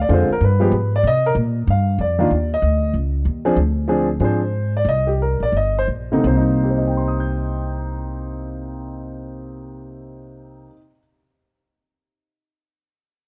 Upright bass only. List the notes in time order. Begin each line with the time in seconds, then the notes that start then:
0.09 F2
0.29 muted upright bass stroke
0.41 G2
0.72 G#2
1.04 C3
1.35 A#2
1.67 G2
1.98 F2
2.31 D#2
2.62 D2
2.94 C#2
3.25 D#2
3.56 D2
4.20 G#2
4.85 C2
5.40 A#1
5.52 G1
5.88 A#1
6.24 C2